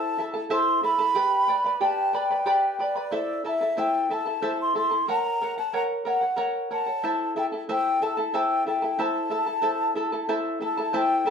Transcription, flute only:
0.00 0.24 A5 medium
0.53 0.83 C6 medium
0.84 1.79 B5 medium
1.84 2.18 A5 medium
2.17 2.82 G5 medium
2.82 3.43 D5 medium
3.47 3.81 E5 medium
3.79 4.15 G5 medium
4.14 4.61 A5 medium
4.61 4.76 C6 medium
4.77 5.08 C6 medium
5.10 5.55 A#5 medium
5.59 5.74 A5 medium
5.76 5.83 A#5 medium
6.08 6.42 F#5 medium
6.72 7.33 A5 medium
7.38 7.46 G5 medium
7.71 8.04 G5 medium
8.03 8.37 A5 medium
8.35 8.67 G5 medium
8.68 9.03 G5 medium
9.01 10.31 A5 medium
10.64 10.98 A5 medium
10.97 11.29 G5 loud

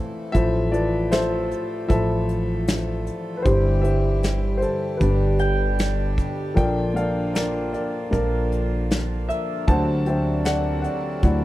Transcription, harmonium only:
0.00 0.32 E3 medium
0.00 0.32 A3 medium
0.35 3.43 F3 medium
0.35 3.42 A3 medium
3.47 5.00 E3 medium
3.47 6.55 G3 medium
3.47 6.55 G4 medium
5.00 6.55 B2 medium
5.00 6.55 D3 medium
5.00 6.55 D4 medium
6.57 9.65 D3 medium
6.57 9.65 F3 medium
6.57 11.45 A#3 medium
6.57 9.65 F4 medium
9.69 11.45 C3 medium
9.69 11.45 F#3 medium
9.69 11.45 D4 medium
9.69 11.45 A4 medium

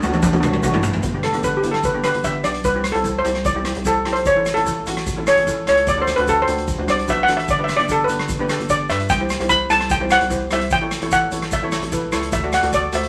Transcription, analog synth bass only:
0.04 0.30 D2 loud
0.33 0.60 D2 medium
0.63 0.99 A1 medium
1.03 1.30 G1 loud
1.34 1.60 G1 medium
1.64 1.90 G1 medium
1.94 2.12 G1 medium
2.14 2.45 G1 medium
2.44 2.66 B1 medium
2.64 2.91 C2 loud
2.95 3.21 C2 medium
3.25 3.52 C2 medium
3.56 3.73 C2 medium
3.76 4.08 C2 medium
4.06 4.27 B1 medium
4.26 4.53 A1 loud
4.56 4.83 A1 medium
4.87 5.13 A1 medium
5.18 5.35 A1 medium
5.37 5.69 A1 medium
5.68 5.89 C#2 medium
5.87 6.14 D2 loud
6.18 6.44 D2 medium
6.48 6.74 D2 medium
6.78 6.87 D2 medium
6.88 7.06 C2 medium
7.09 7.26 B1 medium
7.28 7.50 A1 medium
7.48 7.75 G1 loud
7.79 8.05 G1 medium
8.08 8.35 G1 medium
8.39 8.57 G1 medium
8.60 8.91 G1 medium
8.89 9.12 G2 medium
9.10 9.37 C2 loud
9.40 9.66 C2 medium
9.70 9.97 C2 medium
10.01 10.18 C2 medium
10.21 10.47 C2 medium
10.52 10.73 C2 medium
10.71 10.98 A1 loud
11.02 11.28 A1 medium
11.32 11.58 A1 loud
11.62 11.80 A1 medium
11.82 12.14 A1 medium
12.13 12.34 C#2 medium
12.32 12.59 D2 loud
12.63 12.89 D2 medium
12.93 13.09 D2 medium

